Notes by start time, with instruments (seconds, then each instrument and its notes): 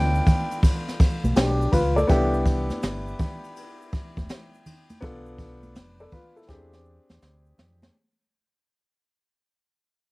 Already playing: fingered electric bass D2, upright piano B3 D4 F4 A4, flute G5
0.15 shaker
0.26 kick, ride, high conga, low conga, shaker
0.51 ride, shaker
0.63 kick, ride, shaker
0.88 snare, shaker
1.00 kick, ride, shaker
1.24 fingered electric bass B1, ride, high conga, shaker
1.36 fingered electric bass B1, upright piano D4 G4, snare, hi-hat pedal, ride, shaker
1.61 shaker
1.72 fingered electric bass C#2, upright piano F4 B4, kick, ride, low conga, shaker
1.96 upright piano A4 D5, high conga, shaker
2.07 fingered electric bass C2, upright piano B3 D4 E4 G4, kick, ride, shaker
2.34 shaker
2.46 kick, ride, shaker
2.70 snare, ride, high conga, shaker
2.82 fingered electric bass G1, snare, hi-hat pedal, ride, high conga, shaker
3.07 shaker
3.19 kick, ride, high conga, low conga, shaker
3.44 ride, shaker
3.56 ride, shaker
3.81 shaker
3.92 kick, ride, shaker
4.17 fingered electric bass E1, kick, high conga, shaker
4.29 snare, hi-hat pedal, ride, shaker
4.54 shaker
4.66 ride, low conga, shaker
4.89 ride, high conga, shaker
5.01 fingered electric bass B1, upright piano B3 D4 F4 A4, kick, ride, shaker
5.26 shaker
5.39 kick, ride, low conga, shaker
5.63 ride, high conga, shaker
5.75 fingered electric bass F1, snare, hi-hat pedal, ride, high conga, shaker
5.99 upright piano A4 D5, shaker
6.11 upright piano F4 B4, kick, ride, high conga, low conga, shaker
6.36 upright piano E4 A4, shaker
6.48 fingered electric bass E2, upright piano C4 D4 G4 G#4, kick, snare, shaker
6.73 snare, shaker
6.85 shaker
7.10 fingered electric bass E2, snare, high conga, shaker
7.21 fingered electric bass D2, snare, shaker
7.46 shaker
7.58 fingered electric bass F2, snare, low conga, shaker
7.82 snare, high conga, shaker